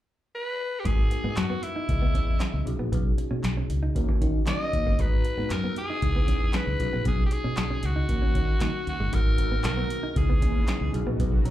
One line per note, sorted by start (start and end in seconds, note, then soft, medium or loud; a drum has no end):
0.35 0.81 B4 loud
0.80 0.87 G4 medium
0.85 1.03 G#1 medium
0.85 0.94 G#3 medium
0.85 1.86 B3 medium
0.85 1.87 D#4 medium
0.85 1.87 F#4 medium
0.85 1.39 G#4 medium
0.85 1.87 A#4 medium
0.85 kick loud
0.85 closed hi-hat medium
1.11 muted clean electric guitar stroke soft
1.11 closed hi-hat medium
1.24 1.33 G#2 medium
1.24 1.34 B3 medium
1.37 1.55 F#2 medium
1.37 1.65 F#4 medium
1.37 snare loud
1.37 clap medium
1.37 closed hi-hat medium
1.50 1.59 B3 medium
1.63 2.67 E4 medium
1.63 muted clean electric guitar stroke soft
1.63 closed hi-hat medium
1.76 1.85 D#4 medium
1.88 2.07 C#2 medium
1.88 2.66 B3 medium
1.88 2.66 E4 medium
1.88 2.66 G#4 medium
1.88 2.66 D#5 medium
1.88 muted clean electric guitar stroke soft
1.88 kick loud
1.88 closed hi-hat medium
2.02 2.11 B3 medium
2.14 2.33 E2 medium
2.14 2.24 C#4 medium
2.14 kick medium
2.14 closed hi-hat medium
2.40 2.50 C#4 medium
2.40 snare loud
2.40 clap medium
2.40 closed hi-hat medium
2.54 2.63 C#2 medium
2.54 muted clean electric guitar stroke soft
2.65 2.75 B1 medium
2.65 3.92 C#4 medium
2.65 3.93 D#4 medium
2.65 3.93 F#4 medium
2.65 3.93 G#4 medium
2.65 closed hi-hat medium
2.79 2.88 A#1 medium
2.79 2.89 B3 medium
2.92 3.10 B1 loud
2.92 3.02 B3 medium
2.92 kick loud
2.92 closed hi-hat medium
3.18 muted clean electric guitar stroke soft
3.18 closed hi-hat medium
3.31 3.40 B2 medium
3.31 3.40 C#4 medium
3.44 3.62 B1 medium
3.44 snare loud
3.44 clap medium
3.44 closed hi-hat medium
3.57 3.67 C#4 medium
3.70 3.88 C#2 medium
3.70 muted clean electric guitar stroke soft
3.70 closed hi-hat medium
3.83 3.92 D#4 medium
3.95 4.05 D#2 loud
3.95 4.97 C#4 medium
3.95 4.97 D#4 medium
3.95 4.97 F#4 medium
3.95 4.97 A#4 medium
3.95 muted clean electric guitar stroke soft
3.95 kick loud
3.95 closed hi-hat medium
4.08 4.17 D#2 medium
4.08 4.18 A#3 medium
4.21 4.39 D#3 medium
4.21 4.31 C#4 medium
4.21 kick medium
4.21 closed hi-hat medium
4.47 4.56 D#3 medium
4.47 4.57 C#4 medium
4.47 5.02 D#5 loud
4.47 snare loud
4.47 clap medium
4.47 closed hi-hat medium
4.61 muted clean electric guitar stroke soft
4.73 4.82 D#2 medium
4.73 kick medium
4.73 closed hi-hat medium
4.86 4.95 G1 medium
4.86 4.96 A#3 medium
4.98 5.17 G#1 loud
4.98 5.09 G#3 medium
4.98 6.00 B3 medium
4.98 6.00 D#4 medium
4.98 6.01 F#4 medium
4.98 5.54 B4 loud
4.98 6.01 A#5 medium
4.98 kick loud
4.98 closed hi-hat medium
5.25 muted clean electric guitar stroke soft
5.25 closed hi-hat medium
5.37 5.47 G#2 medium
5.37 5.47 B3 medium
5.50 5.68 F#2 medium
5.50 5.77 A#4 medium
5.50 snare loud
5.50 clap medium
5.50 closed hi-hat medium
5.64 5.73 B3 medium
5.76 6.57 G#4 loud
5.76 muted clean electric guitar stroke soft
5.76 closed hi-hat medium
5.90 5.99 D#4 medium
6.02 6.20 C#2 loud
6.02 6.80 B3 medium
6.02 6.79 D#4 medium
6.02 6.80 E4 medium
6.02 6.80 G#4 medium
6.02 muted clean electric guitar stroke soft
6.02 kick loud
6.02 closed hi-hat medium
6.16 6.25 B3 medium
6.28 6.46 E2 medium
6.28 6.38 C#4 medium
6.28 kick medium
6.28 closed hi-hat medium
6.53 6.64 C#4 medium
6.53 7.07 B4 loud
6.53 snare loud
6.53 clap medium
6.53 closed hi-hat medium
6.67 6.76 C#2 medium
6.67 muted clean electric guitar stroke soft
6.80 6.89 B1 medium
6.80 8.07 C#4 medium
6.80 8.07 D#4 medium
6.80 8.07 F#4 medium
6.80 8.07 G#4 medium
6.80 closed hi-hat medium
6.93 7.02 A#1 medium
6.93 7.03 B3 medium
7.05 7.24 B1 loud
7.05 7.15 B3 medium
7.05 7.24 G#4 medium
7.05 kick loud
7.05 closed hi-hat medium
7.26 7.34 G4 medium
7.31 7.86 G#4 medium
7.31 muted clean electric guitar stroke soft
7.31 closed hi-hat medium
7.44 7.54 B2 medium
7.44 7.54 C#4 medium
7.57 7.76 B1 medium
7.57 snare loud
7.57 clap medium
7.57 closed hi-hat medium
7.70 7.80 C#4 medium
7.83 8.01 C#2 medium
7.83 8.88 F#4 medium
7.83 muted clean electric guitar stroke soft
7.83 closed hi-hat medium
7.96 8.06 D#4 medium
8.08 8.18 D#2 loud
8.08 9.10 C#4 medium
8.08 9.10 D#4 medium
8.08 9.11 F#4 medium
8.08 9.11 A#4 medium
8.08 muted clean electric guitar stroke soft
8.08 kick loud
8.08 closed hi-hat medium
8.22 8.31 D#2 medium
8.22 8.32 C#4 medium
8.35 8.53 D#3 medium
8.35 8.45 C#4 medium
8.35 kick loud
8.35 closed hi-hat medium
8.60 8.70 D#3 medium
8.60 8.70 A#3 medium
8.60 snare loud
8.60 clap medium
8.60 closed hi-hat medium
8.74 muted clean electric guitar stroke soft
8.87 8.96 D#2 medium
8.87 9.16 F#4 medium
8.87 closed hi-hat medium
9.00 9.09 G1 medium
9.00 9.09 G#3 medium
9.12 9.31 G#1 loud
9.12 10.15 D#3 medium
9.12 9.22 G#3 medium
9.12 11.50 G#3 medium
9.12 10.13 B3 medium
9.12 10.15 B3 medium
9.12 10.14 D#4 medium
9.12 10.14 F#4 medium
9.12 10.16 F#4 medium
9.12 10.14 A#4 medium
9.12 10.16 A#4 medium
9.12 9.65 A#4 medium
9.12 kick loud
9.12 closed hi-hat medium
9.38 9.57 G#1 medium
9.38 muted clean electric guitar stroke soft
9.38 closed hi-hat medium
9.52 9.61 B3 medium
9.64 9.83 B1 loud
9.64 10.11 A#4 medium
9.64 snare loud
9.64 clap medium
9.64 closed hi-hat medium
9.77 9.87 B3 medium
9.90 muted clean electric guitar stroke soft
9.90 closed hi-hat medium
10.03 10.13 D#4 medium
10.11 10.19 A#4 medium
10.15 10.34 C#2 loud
10.15 10.93 C#3 medium
10.15 10.93 E3 medium
10.15 10.93 B3 medium
10.15 11.50 B3 medium
10.15 10.93 C#4 medium
10.15 10.91 D#4 medium
10.15 10.94 E4 medium
10.15 10.93 G#4 medium
10.15 10.94 G#4 medium
10.15 muted clean electric guitar stroke soft
10.15 kick loud
10.15 closed hi-hat medium
10.29 10.39 B3 medium
10.42 10.60 D#2 medium
10.42 10.52 C#4 medium
10.42 kick loud
10.42 closed hi-hat medium
10.68 10.78 C#4 medium
10.68 snare loud
10.68 clap medium
10.68 closed hi-hat medium
10.81 10.90 C#2 medium
10.81 muted clean electric guitar stroke soft
10.92 11.03 B1 loud
10.92 11.50 D#3 medium
10.92 11.50 F#3 medium
10.92 11.50 C#4 medium
10.92 11.44 D#4 medium
10.92 11.44 F#4 medium
10.92 11.50 F#4 medium
10.92 11.45 G#4 medium
10.92 closed hi-hat medium
11.06 11.16 A#1 medium
11.06 11.16 B3 medium
11.19 11.38 B1 loud
11.19 11.29 B3 medium
11.19 kick loud
11.19 closed hi-hat medium
11.45 11.50 B1 medium
11.45 11.50 C#5 medium
11.45 11.50 A#5 medium
11.45 muted clean electric guitar stroke soft
11.45 closed hi-hat medium